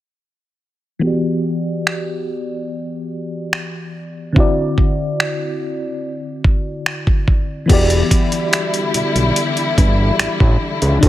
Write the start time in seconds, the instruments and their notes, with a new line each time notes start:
0.99 fm electric piano E3 B3 F#4
1.05 fm electric piano G4 D5
1.87 finger snap
3.53 finger snap
4.32 fm electric piano D3 C4 E4, kick
4.38 fm electric piano F#4 D5
4.78 kick
5.20 finger snap
6.44 kick
6.86 finger snap
7.07 kick
7.28 kick
7.66 analog synth bass E1, string section D3 G3 E4, fm electric piano E3 B3 F#4, kick, closed hi-hat, crash
7.71 fm electric piano G4 D5
7.90 closed hi-hat
8.11 kick, closed hi-hat
8.32 closed hi-hat
8.53 finger snap, closed hi-hat
8.74 closed hi-hat
8.94 analog synth bass B1, closed hi-hat
9.15 analog synth bass B1, closed hi-hat
9.36 closed hi-hat
9.57 closed hi-hat
9.78 analog synth bass G1, kick, closed hi-hat
10.19 analog synth bass A1, finger snap, closed hi-hat
10.40 analog synth bass A1, kick
10.82 analog synth bass C#2, closed hi-hat
10.99 analog synth bass D2, fm electric piano D3 D4 E4, kick, closed hi-hat
11.03 string section C4 F#4, fm electric piano F#4